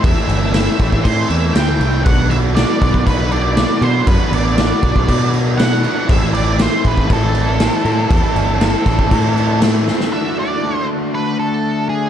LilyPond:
<<
  \new Staff \with { instrumentName = "Lead electric guitar" } { \time 4/4 \key a \dorian \tempo 4 = 119 e''4 e''4 c''8 e''8 g''4 | fis''8 e''8 d''4 b'8 d''4 c''8 | b'8 d''2 r8 fis''4 | e''8 d''8 c''8 b'8 a'2~ |
a'2. r4 | e''8 d''4 r8 b'8 a'4 gis'8 | }
  \new Staff \with { instrumentName = "Overdriven electric guitar" } { \time 4/4 \key a \dorian <a, e a c' e' c''>4 <a, e a c' e' c''>8 <a, e a c' e' c''>8 <a, e a c' e' c''>4 <a, e a c' e' c''>8 <a, e a c' e' c''>8 | <b, fis b d' fis' b'>4 <b, fis b d' fis' b'>8 <b, fis b d' fis' b'>8 <b, fis b d' fis' b'>4 <b, fis b d' fis' b'>8 <b, fis b d' fis' b'>8 | <b, fis b d' fis' b'>4 <b, fis b d' fis' b'>8 <b, fis b d' fis' b'>8 <b, fis b d' fis' b'>4 <b, fis b d' fis' b'>8 <b, fis b d' fis' b'>8 | <a, e a c' e' c''>4 <a, e a c' e' c''>8 <a, e a c' e' c''>8 <a, e a c' e' c''>4 <a, e a c' e' c''>8 <a, e a c' e' c''>8 |
<a, e a c' e' c''>4 <a, e a c' e' c''>8 <a, e a c' e' c''>8 <a, e a c' e' c''>4 <a, e a c' e' c''>8 <a, e a c' e' c''>8 | <d a d' fis'>1 | }
  \new Staff \with { instrumentName = "Distorted electric guitar" } { \time 4/4 \key a \dorian <a, e a c' e'>4 <a, e a c' e'>8 <a, e a c' e'>8 <a, e a c' e'>4 <a, e a c' e'>8 <a, e a c' e'>8 | <b, fis b d' fis'>4 <b, fis b d' fis'>8 <b, fis b d' fis'>8 <b, fis b d' fis'>4 <b, fis b d' fis'>8 <b, fis b d' fis'>8 | <b, fis b d' fis'>4 <b, fis b d' fis'>8 <b, fis b d' fis'>8 <b, fis b d' fis'>4 <b, fis b d' fis'>8 <b, fis b d' fis'>8 | <a, e a c' e'>4 <a, e a c' e'>8 <a, e a c' e'>8 <a, e a c' e'>4 <a, e a c' e'>8 <a, e a c' e'>8 |
<a, e a c' e'>4 <a, e a c' e'>8 <a, e a c' e'>8 <a, e a c' e'>4 <a, e a c' e'>8 <a, e a c' e'>8 | <d a d' fis'>1 | }
  \new Staff \with { instrumentName = "Picked electric bass" } { \clef bass \time 4/4 \key a \dorian e,16 r16 g,,4 a,,16 a,,16 a,8 e,8 d,8 c,8 | b,,4. b,,16 b,,16 b,,4. b,8 | fis,16 r16 a,,4 b,,16 b,,16 b,2 | a,,4. a,,16 a,,16 a,,4. a,8 |
e,16 r16 g,,4 a,,16 a,,16 a,2 | r1 | }
  \new DrumStaff \with { instrumentName = "Drums" } \drummode { \time 4/4 <cymc bd>8 cymc8 <cymc sn>8 <cymc bd>16 bd16 <cymc bd>8 cymc8 <cymc sn>8 cymc8 | <cymc bd>8 cymc8 <cymc sn>8 <cymc bd>16 bd16 <cymc bd>8 cymc8 <cymc sn>8 cymc8 | <cymc bd>8 cymc8 <cymc sn>8 <cymc bd>16 bd16 <cymc bd>8 cymc8 <cymc sn>8 cymc8 | <cymc bd>8 cymc8 <cymc sn>8 <cymc bd>16 bd16 <cymc bd>8 cymc8 <cymc sn>8 cymc8 |
<cymc bd>8 cymc8 <cymc sn>8 <cymc bd sn>16 bd16 <cymc bd>8 cymc8 <cymc sn>8 sn16 sn16 | r4 r4 r4 r4 | }
>>